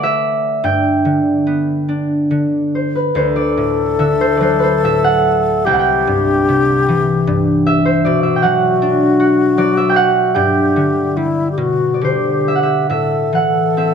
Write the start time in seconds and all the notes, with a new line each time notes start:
Already playing: D3 A3 F#4 A4 C5 D5 F#5
0.03 E5
0.64 G2 G5
1.05 D3
1.47 B3
1.89 D4
2.31 D3
2.75 C5
2.95 B4
3.14 D2 A4 C5
3.36 D5
3.57 A2
3.99 D3 E5
4.21 C5
4.37 F#3 D5
4.42 C5
4.59 B4
4.63 C5
4.84 A2 E5
5.04 F#5
5.65 C2 G4 G5
5.73 F#5
5.79 G5
6.07 G2
6.49 C3
6.89 E3
7.27 G2
7.66 E5
7.85 C5
8.05 B2 F#4 D5
8.23 E5
8.36 G5
8.42 F#3 F#5
8.82 D4
9.20 F#4
9.58 F#3 D5
9.77 E5
9.89 G5
9.96 F#5
10.34 G2 G4 G5
10.76 D3
11.17 G3 E4
11.52 G4
11.58 B2 F#4
11.94 D5
12.01 D3 G4 C5
12.48 E5
12.55 F#5
12.63 E5
12.90 A2 A4 E5
13.33 E3 F#5
13.77 C4 E5